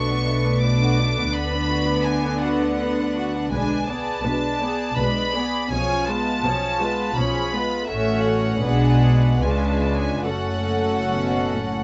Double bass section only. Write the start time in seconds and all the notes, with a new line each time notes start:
Already playing: B1
1.34 D2
3.51 B1
4.23 B1
4.97 B1
5.71 B1
6.44 B1
7.17 B1
7.90 A1
8.63 B1
9.42 C#2
10.25 F#1